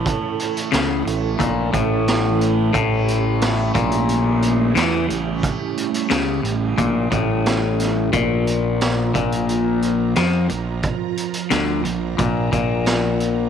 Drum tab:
HH |x-xxx-x-x-x-x-x-|x-x-x-xxx-x-x-x-|x-xxx-x-x-x-x-x-|x-x-x-xxx-x-x-x-|
SD |----o-------o---|----o-------o---|----o-------o-o-|----o-------o---|
BD |o-------o-o-----|o-----o---------|o-------o-o-----|o-----o---------|

HH |x-xxx-x-x-x-x-x-|
SD |----o-------o---|
BD |o-------o-o-----|